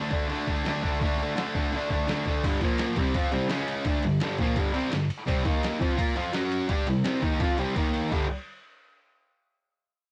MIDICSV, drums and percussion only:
0, 0, Header, 1, 2, 480
1, 0, Start_track
1, 0, Tempo, 355030
1, 1356, Time_signature, 4, 2, 24, 8
1, 13680, End_track
2, 0, Start_track
2, 0, Title_t, "Drums"
2, 144, Note_on_c, 9, 49, 68
2, 153, Note_on_c, 9, 36, 92
2, 279, Note_off_c, 9, 49, 0
2, 288, Note_off_c, 9, 36, 0
2, 398, Note_on_c, 9, 49, 84
2, 533, Note_off_c, 9, 49, 0
2, 640, Note_on_c, 9, 49, 68
2, 642, Note_on_c, 9, 36, 80
2, 775, Note_off_c, 9, 49, 0
2, 777, Note_off_c, 9, 36, 0
2, 879, Note_on_c, 9, 49, 84
2, 895, Note_on_c, 9, 38, 104
2, 1014, Note_off_c, 9, 49, 0
2, 1030, Note_off_c, 9, 38, 0
2, 1122, Note_on_c, 9, 49, 58
2, 1124, Note_on_c, 9, 36, 85
2, 1257, Note_off_c, 9, 49, 0
2, 1259, Note_off_c, 9, 36, 0
2, 1367, Note_on_c, 9, 36, 121
2, 1371, Note_on_c, 9, 49, 83
2, 1502, Note_off_c, 9, 36, 0
2, 1506, Note_off_c, 9, 49, 0
2, 1614, Note_on_c, 9, 49, 63
2, 1749, Note_off_c, 9, 49, 0
2, 1850, Note_on_c, 9, 49, 86
2, 1866, Note_on_c, 9, 38, 115
2, 1985, Note_off_c, 9, 49, 0
2, 2001, Note_off_c, 9, 38, 0
2, 2093, Note_on_c, 9, 36, 96
2, 2095, Note_on_c, 9, 49, 61
2, 2228, Note_off_c, 9, 36, 0
2, 2230, Note_off_c, 9, 49, 0
2, 2331, Note_on_c, 9, 49, 81
2, 2466, Note_off_c, 9, 49, 0
2, 2574, Note_on_c, 9, 36, 82
2, 2580, Note_on_c, 9, 49, 64
2, 2709, Note_off_c, 9, 36, 0
2, 2716, Note_off_c, 9, 49, 0
2, 2814, Note_on_c, 9, 49, 84
2, 2830, Note_on_c, 9, 38, 115
2, 2949, Note_off_c, 9, 49, 0
2, 2966, Note_off_c, 9, 38, 0
2, 3047, Note_on_c, 9, 49, 61
2, 3052, Note_on_c, 9, 36, 89
2, 3183, Note_off_c, 9, 49, 0
2, 3187, Note_off_c, 9, 36, 0
2, 3295, Note_on_c, 9, 36, 110
2, 3302, Note_on_c, 9, 51, 115
2, 3302, Note_on_c, 9, 57, 127
2, 3430, Note_off_c, 9, 36, 0
2, 3437, Note_off_c, 9, 51, 0
2, 3437, Note_off_c, 9, 57, 0
2, 3530, Note_on_c, 9, 51, 87
2, 3533, Note_on_c, 9, 36, 112
2, 3666, Note_off_c, 9, 51, 0
2, 3668, Note_off_c, 9, 36, 0
2, 3762, Note_on_c, 9, 51, 111
2, 3778, Note_on_c, 9, 38, 118
2, 3897, Note_off_c, 9, 51, 0
2, 3913, Note_off_c, 9, 38, 0
2, 4006, Note_on_c, 9, 51, 82
2, 4011, Note_on_c, 9, 36, 110
2, 4141, Note_off_c, 9, 51, 0
2, 4146, Note_off_c, 9, 36, 0
2, 4250, Note_on_c, 9, 51, 116
2, 4252, Note_on_c, 9, 36, 107
2, 4386, Note_off_c, 9, 51, 0
2, 4387, Note_off_c, 9, 36, 0
2, 4488, Note_on_c, 9, 51, 80
2, 4623, Note_off_c, 9, 51, 0
2, 4726, Note_on_c, 9, 51, 111
2, 4742, Note_on_c, 9, 38, 101
2, 4861, Note_off_c, 9, 51, 0
2, 4877, Note_off_c, 9, 38, 0
2, 4973, Note_on_c, 9, 51, 75
2, 5108, Note_off_c, 9, 51, 0
2, 5203, Note_on_c, 9, 51, 105
2, 5210, Note_on_c, 9, 36, 111
2, 5338, Note_off_c, 9, 51, 0
2, 5346, Note_off_c, 9, 36, 0
2, 5442, Note_on_c, 9, 51, 79
2, 5577, Note_off_c, 9, 51, 0
2, 5681, Note_on_c, 9, 51, 104
2, 5697, Note_on_c, 9, 38, 118
2, 5816, Note_off_c, 9, 51, 0
2, 5832, Note_off_c, 9, 38, 0
2, 5926, Note_on_c, 9, 51, 74
2, 5930, Note_on_c, 9, 36, 120
2, 6061, Note_off_c, 9, 51, 0
2, 6065, Note_off_c, 9, 36, 0
2, 6165, Note_on_c, 9, 51, 106
2, 6171, Note_on_c, 9, 36, 105
2, 6300, Note_off_c, 9, 51, 0
2, 6306, Note_off_c, 9, 36, 0
2, 6407, Note_on_c, 9, 51, 73
2, 6542, Note_off_c, 9, 51, 0
2, 6647, Note_on_c, 9, 51, 105
2, 6663, Note_on_c, 9, 38, 114
2, 6782, Note_off_c, 9, 51, 0
2, 6798, Note_off_c, 9, 38, 0
2, 6897, Note_on_c, 9, 51, 83
2, 7032, Note_off_c, 9, 51, 0
2, 7133, Note_on_c, 9, 36, 110
2, 7141, Note_on_c, 9, 51, 109
2, 7268, Note_off_c, 9, 36, 0
2, 7276, Note_off_c, 9, 51, 0
2, 7370, Note_on_c, 9, 51, 90
2, 7371, Note_on_c, 9, 36, 127
2, 7506, Note_off_c, 9, 36, 0
2, 7506, Note_off_c, 9, 51, 0
2, 7615, Note_on_c, 9, 51, 112
2, 7631, Note_on_c, 9, 38, 113
2, 7750, Note_off_c, 9, 51, 0
2, 7766, Note_off_c, 9, 38, 0
2, 7852, Note_on_c, 9, 36, 117
2, 7861, Note_on_c, 9, 51, 83
2, 7987, Note_off_c, 9, 36, 0
2, 7996, Note_off_c, 9, 51, 0
2, 8090, Note_on_c, 9, 36, 107
2, 8094, Note_on_c, 9, 51, 112
2, 8225, Note_off_c, 9, 36, 0
2, 8229, Note_off_c, 9, 51, 0
2, 8325, Note_on_c, 9, 51, 79
2, 8460, Note_off_c, 9, 51, 0
2, 8561, Note_on_c, 9, 51, 113
2, 8577, Note_on_c, 9, 38, 115
2, 8696, Note_off_c, 9, 51, 0
2, 8712, Note_off_c, 9, 38, 0
2, 8808, Note_on_c, 9, 51, 83
2, 8943, Note_off_c, 9, 51, 0
2, 9043, Note_on_c, 9, 51, 104
2, 9048, Note_on_c, 9, 36, 107
2, 9178, Note_off_c, 9, 51, 0
2, 9183, Note_off_c, 9, 36, 0
2, 9285, Note_on_c, 9, 51, 85
2, 9420, Note_off_c, 9, 51, 0
2, 9524, Note_on_c, 9, 51, 98
2, 9540, Note_on_c, 9, 38, 120
2, 9659, Note_off_c, 9, 51, 0
2, 9676, Note_off_c, 9, 38, 0
2, 9769, Note_on_c, 9, 36, 114
2, 9770, Note_on_c, 9, 51, 73
2, 9904, Note_off_c, 9, 36, 0
2, 9905, Note_off_c, 9, 51, 0
2, 10006, Note_on_c, 9, 51, 100
2, 10010, Note_on_c, 9, 36, 120
2, 10141, Note_off_c, 9, 51, 0
2, 10145, Note_off_c, 9, 36, 0
2, 10246, Note_on_c, 9, 51, 78
2, 10382, Note_off_c, 9, 51, 0
2, 10492, Note_on_c, 9, 36, 106
2, 10493, Note_on_c, 9, 51, 98
2, 10627, Note_off_c, 9, 36, 0
2, 10628, Note_off_c, 9, 51, 0
2, 10732, Note_on_c, 9, 51, 70
2, 10868, Note_off_c, 9, 51, 0
2, 10975, Note_on_c, 9, 36, 101
2, 10978, Note_on_c, 9, 57, 96
2, 11110, Note_off_c, 9, 36, 0
2, 11113, Note_off_c, 9, 57, 0
2, 13680, End_track
0, 0, End_of_file